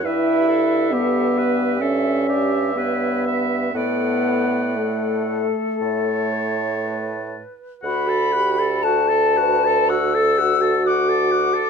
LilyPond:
<<
  \new Staff \with { instrumentName = "Oboe" } { \time 4/4 \key d \major \tempo 4 = 61 e''2 e''2 | fis''4.~ fis''16 r16 a''4.~ a''16 r16 | fis''16 a''16 fis''16 a''16 fis''16 a''16 fis''16 a''16 fis''16 a''16 fis''16 a''16 fis''16 a''16 fis''16 a''16 | }
  \new Staff \with { instrumentName = "Flute" } { \time 4/4 \key d \major g'8 b'8 a'8 g'8 e''8 d''8 cis''8 b'8 | a'4 a'4. cis''8 b'4 | b''4 a''4 e'''4 d'''4 | }
  \new Staff \with { instrumentName = "Clarinet" } { \time 4/4 \key d \major b'8 a'8 g'8 b'8 a'8 g'8 b'8 e''8 | d''4.~ d''16 r16 cis''4.~ cis''16 r16 | fis'16 a'16 fis'16 a'16 fis'16 a'16 fis'16 a'16 fis'16 a'16 fis'16 a'16 fis'16 a'16 fis'16 a'16 | }
  \new Staff \with { instrumentName = "French horn" } { \time 4/4 \key d \major e'4 b4 cis'4 b4 | b4 a2~ a8 r8 | fis'8 g'8 a'8 b'8 a'8 fis'4. | }
  \new Staff \with { instrumentName = "Bassoon" } { \clef bass \time 4/4 \key d \major g,1 | a,4. r8 a,4. r8 | d,1 | }
>>